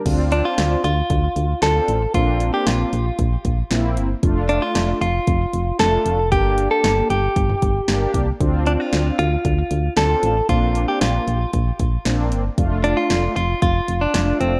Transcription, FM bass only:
X:1
M:4/4
L:1/8
Q:1/4=115
K:Dm
V:1 name="FM bass" clef=bass
D,,2 D,, D,, D,, D,, D,, A,,, | B,,,2 B,,, B,,, B,,, B,,, B,,, G,,, | F,,,2 F,,, F,,, F,,, F,,, F,,, F,,, | G,,,2 G,,, G,,, G,,, G,,, G,,, C,, |
D,,2 D,, D,, D,, D,, D,, A,,, | B,,,2 B,,, B,,, B,,, B,,, B,,, G,,, | F,,,2 F,,, F,,, F,,, F,,, F,,, F,,, |]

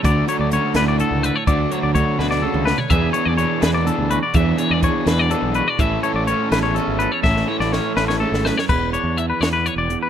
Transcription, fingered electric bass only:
X:1
M:6/8
L:1/16
Q:3/8=83
K:Emix
V:1 name="Fingered electric bass" clef=bass
D,,2 z D,,2 z D,,3 C,,2 z | D,,2 z D,,2 z D,,3 C,,2 z | E,,2 z E,,2 z E,,3 D,,2 z | E,,2 z E,,2 z E,,3 B,,,2 z |
A,,,2 z A,,,2 z A,,,3 G,,,2 z | A,,,2 z A,,,2 z A,,,3 G,,,2 z | E,,,3 E,,3 E,,3 E,,,2 z |]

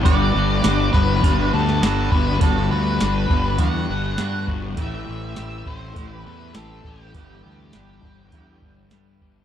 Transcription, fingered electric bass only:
X:1
M:4/4
L:1/8
Q:1/4=101
K:G
V:1 name="Fingered electric bass" clef=bass
G,,, G,,, G,,, G,,, G,,, D,, G,,, G,,, | G,,, D,, G,,, G,,, E,, G,,, G,, G,,, | A,,, A,,, A,,, A,,, A,,, E,, A,,, A,,, | G,,, D,, G,,, G,,, E,, G,,, G,, G,,, |]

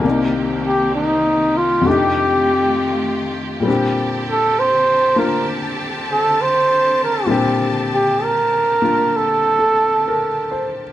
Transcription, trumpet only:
X:1
M:4/4
L:1/8
Q:"Swing" 1/4=66
K:Bb
V:1 name="Trumpet"
z G E F G3 z | z A c B z A c B | z G B2 A3 z |]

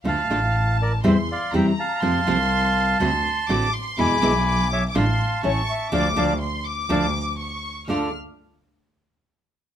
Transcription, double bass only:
X:1
M:4/4
L:1/8
Q:1/4=123
K:Dm
V:1 name="Double bass" clef=bass
D,, A,,,3 E,, z E,, z | F,, C,,3 D,, z A,,, z | E,, =B,,,3 A,,, z A,,, z | D,, D,, z2 D,, z3 |
D,, z6 z |]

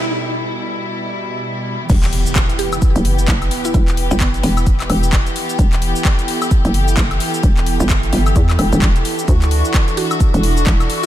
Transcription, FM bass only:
X:1
M:4/4
L:1/16
Q:"Swing 16ths" 1/4=130
K:Em
V:1 name="FM bass" clef=bass
z16 | E,,,3 z6 F,,,3 F,,,2 z2 | E,,,3 G,,,3 E,,,4 E,,,3 z3 | E,,,3 z6 F,,,3 F,,,2 z2 |
E,,,3 G,,,3 G,,,2 E,,2 E,,, E,,, E,,,2 z2 | D,,3 z6 E,,,3 E,,,2 z2 |]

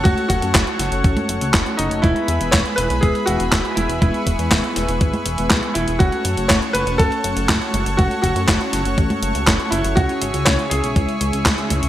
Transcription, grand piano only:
X:1
M:4/4
L:1/8
Q:1/4=121
K:F#m
V:1 name="Grand piano"
F F6 ^D | E2 c B G F2 E | E3 z4 E | F2 c B A4 |
F F6 E | F2 c G4- G |]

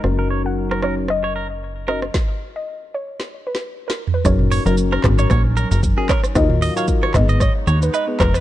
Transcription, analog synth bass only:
X:1
M:4/4
L:1/16
Q:"Swing 16ths" 1/4=114
K:F#
V:1 name="Analog synth bass" clef=bass
F,,,16 | z16 | F,,,3 F,,,3 G,,,2 A,,,3 F,,,2 z3 | D,,3 z3 G,,,3 z D,,2 z2 E,,,2 |]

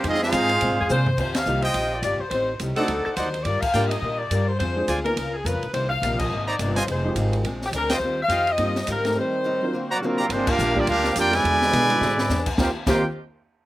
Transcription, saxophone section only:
X:1
M:4/4
L:1/8
Q:"Swing" 1/4=210
K:Eb
V:1 name="Saxophone section"
z4 z A c2 | c f2 e2 d d c | c2 z =A2 A c2 | d f2 e2 d2 c |
c2 z B2 A _c2 | c f2 e2 d2 c | c2 z3 G B c- | c f2 e3 B2 |
c6 z2 | z8 | z8 | z8 |]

